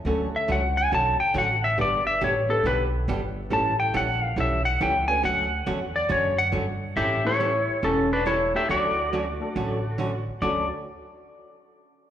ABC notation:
X:1
M:4/4
L:1/8
Q:"Swing" 1/4=139
K:D
V:1 name="Electric slide guitar"
z e f ^g a =g f e | d e c A B z3 | a g f =f e ^f g ^g | f3 d c f z2 |
[Ge] [Ec]3 [CA] [DB] [Ec] [Ge] | [Fd]6- [Fd] z | d z6 z |]
V:2 name="Honky-tonk piano"
[A,CDFA]4- [A,CDFA] z3 | [G,B,DGB]3 [G,B,DGB] z4 | [A,CEGA]3 z4 [A,CDFB] | z8 |
z [A,CEGA] z4 z [A,DEFA]- | [A,DEFA]2 z [A,DFA]3 z2 | [CDFA] z6 z |]
V:3 name="Hollow-body jazz guitar"
[D,F,A,CF] z [D,F,A,CF] z [D,F,A,CF] z [D,F,A,CF] z | [D,G,B,DG] z [D,G,B,DG] z [D,G,B,DG] z [D,G,B,DG] z | [E,G,CEA] z [E,G,CEA] z [E,G,CEA] z [E,G,CEA] z | [D,F,A,CF] z [D,F,A,CF] z [D,F,A,CF] z [D,F,A,CF] z |
[E,G,CEA] z [E,G,CEA] z [E,G,CEA] z [E,G,CEA] z | [D,F,A,CF] z [D,F,A,CF] z [D,F,A,CF] z [D,F,A,CF] z | [D,F,A,CF] z6 z |]
V:4 name="Upright bass" clef=bass
D,,2 C,,2 B,,, z A,,,2 | G,,,2 A,,,2 B,,,2 G,,,2 | A,,,2 _B,,,2 =B,,,2 C,,2 | D,,2 E,,2 F,,2 G,,2 |
A,,,4 E,,,4 | D,,4 A,,,4 | D,, z6 z |]